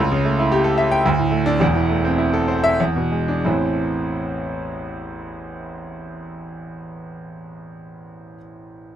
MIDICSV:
0, 0, Header, 1, 2, 480
1, 0, Start_track
1, 0, Key_signature, 0, "minor"
1, 0, Tempo, 538117
1, 2, Time_signature, 3, 2, 24, 8
1, 1441, Tempo, 592300
1, 2401, Tempo, 648649
1, 6958, End_track
2, 0, Start_track
2, 0, Title_t, "Grand piano"
2, 0, Program_c, 0, 0
2, 0, Control_c, 0, 64, 127
2, 0, Note_on_c, 0, 37, 123
2, 19, Control_c, 0, 64, 0
2, 104, Note_on_c, 0, 49, 104
2, 143, Control_c, 0, 64, 127
2, 224, Note_on_c, 0, 57, 97
2, 296, Note_off_c, 0, 49, 0
2, 350, Note_on_c, 0, 64, 95
2, 415, Note_off_c, 0, 57, 0
2, 460, Note_on_c, 0, 67, 115
2, 538, Note_off_c, 0, 64, 0
2, 572, Note_on_c, 0, 69, 107
2, 653, Note_off_c, 0, 67, 0
2, 692, Note_on_c, 0, 76, 106
2, 770, Note_off_c, 0, 69, 0
2, 816, Note_on_c, 0, 79, 127
2, 891, Note_off_c, 0, 76, 0
2, 908, Note_off_c, 0, 37, 0
2, 941, Note_off_c, 0, 79, 0
2, 941, Note_on_c, 0, 38, 127
2, 961, Control_c, 0, 64, 0
2, 1064, Note_on_c, 0, 45, 93
2, 1114, Control_c, 0, 64, 127
2, 1172, Note_on_c, 0, 57, 96
2, 1263, Note_off_c, 0, 45, 0
2, 1301, Note_on_c, 0, 62, 125
2, 1381, Note_off_c, 0, 57, 0
2, 1422, Note_on_c, 0, 28, 108
2, 1424, Note_off_c, 0, 38, 0
2, 1434, Note_off_c, 0, 62, 0
2, 1438, Note_on_c, 0, 40, 114
2, 1458, Control_c, 0, 64, 0
2, 1551, Note_on_c, 0, 52, 101
2, 1594, Control_c, 0, 64, 127
2, 1665, Note_on_c, 0, 57, 89
2, 1741, Note_off_c, 0, 52, 0
2, 1789, Note_on_c, 0, 60, 93
2, 1858, Note_off_c, 0, 57, 0
2, 1900, Note_on_c, 0, 64, 91
2, 1980, Note_off_c, 0, 60, 0
2, 2024, Note_on_c, 0, 69, 102
2, 2098, Note_off_c, 0, 64, 0
2, 2140, Note_on_c, 0, 72, 96
2, 2223, Note_off_c, 0, 69, 0
2, 2268, Note_on_c, 0, 76, 127
2, 2345, Note_off_c, 0, 72, 0
2, 2364, Note_off_c, 0, 28, 0
2, 2372, Note_off_c, 0, 40, 0
2, 2398, Note_off_c, 0, 76, 0
2, 2401, Note_on_c, 0, 40, 104
2, 2417, Control_c, 0, 64, 0
2, 2519, Note_on_c, 0, 47, 83
2, 2548, Control_c, 0, 64, 127
2, 2634, Note_on_c, 0, 56, 74
2, 2715, Note_off_c, 0, 47, 0
2, 2757, Note_on_c, 0, 62, 90
2, 2832, Note_off_c, 0, 56, 0
2, 2869, Note_off_c, 0, 40, 0
2, 2880, Note_off_c, 0, 62, 0
2, 2881, Note_on_c, 0, 33, 92
2, 2884, Note_on_c, 0, 52, 81
2, 2884, Note_on_c, 0, 57, 73
2, 2886, Note_on_c, 0, 40, 80
2, 2889, Note_on_c, 0, 60, 73
2, 2894, Note_on_c, 0, 64, 77
2, 2902, Control_c, 0, 64, 0
2, 3021, Control_c, 0, 64, 127
2, 6508, Note_off_c, 0, 33, 0
2, 6510, Note_off_c, 0, 52, 0
2, 6511, Note_off_c, 0, 57, 0
2, 6513, Note_off_c, 0, 40, 0
2, 6516, Note_off_c, 0, 60, 0
2, 6521, Note_off_c, 0, 64, 0
2, 6958, End_track
0, 0, End_of_file